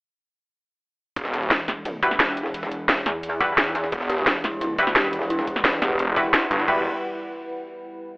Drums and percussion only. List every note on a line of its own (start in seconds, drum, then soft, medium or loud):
1.16 kick loud
1.16 closed hi-hat loud
1.16 ride medium
1.25 snare medium
1.34 snare medium
1.34 closed hi-hat medium
1.34 ride medium
1.42 ride soft
1.51 snare loud
1.51 closed hi-hat loud
1.51 ride medium
1.68 kick medium
1.68 snare medium
1.68 closed hi-hat medium
1.68 ride medium
1.85 closed hi-hat loud
1.85 ride medium
2.03 kick loud
2.03 snare soft
2.03 closed hi-hat medium
2.03 ride medium
2.11 snare soft
2.20 snare loud
2.20 closed hi-hat loud
2.20 ride medium
2.28 snare soft
2.37 closed hi-hat medium
2.37 ride medium
2.46 snare soft
2.54 closed hi-hat loud
2.54 ride medium
2.63 snare medium
2.72 closed hi-hat medium
2.72 ride medium
2.89 snare loud
2.89 closed hi-hat medium
2.89 ride medium
2.97 snare medium
3.06 snare medium
3.06 closed hi-hat medium
3.06 ride medium
3.23 closed hi-hat loud
3.23 ride medium
3.41 kick loud
3.41 snare medium
3.41 closed hi-hat medium
3.41 ride medium
3.58 snare loud
3.58 closed hi-hat medium
3.58 ride medium
3.75 snare medium
3.75 closed hi-hat medium
3.75 ride medium
3.84 snare soft
3.92 kick loud
3.92 closed hi-hat medium
3.92 ride medium
4.01 snare medium
4.10 snare medium
4.10 closed hi-hat medium
4.10 ride medium
4.18 ride soft
4.27 snare loud
4.27 closed hi-hat loud
4.27 ride medium
4.44 kick medium
4.44 snare soft
4.44 closed hi-hat medium
4.44 ride medium
4.61 closed hi-hat medium
4.61 ride medium
4.78 kick loud
4.78 snare soft
4.78 closed hi-hat medium
4.78 ride medium
4.87 snare soft
4.96 snare loud
4.96 closed hi-hat medium
4.96 ride medium
5.04 snare soft
5.13 closed hi-hat medium
5.13 ride medium
5.22 snare soft
5.30 closed hi-hat medium
5.30 ride medium
5.39 snare medium
5.47 kick medium
5.47 closed hi-hat medium
5.47 ride medium
5.56 snare medium
5.65 snare loud
5.65 closed hi-hat medium
5.65 ride medium
5.73 snare medium
5.82 snare soft
5.82 closed hi-hat medium
5.82 ride medium
5.99 closed hi-hat medium
5.99 ride medium
6.16 kick loud
6.16 snare medium
6.16 closed hi-hat medium
6.16 ride medium
6.34 snare loud
6.34 closed hi-hat medium
6.34 ride medium
6.51 snare medium
6.51 closed hi-hat medium
6.51 ride medium
6.59 snare soft
6.68 kick loud
6.68 crash medium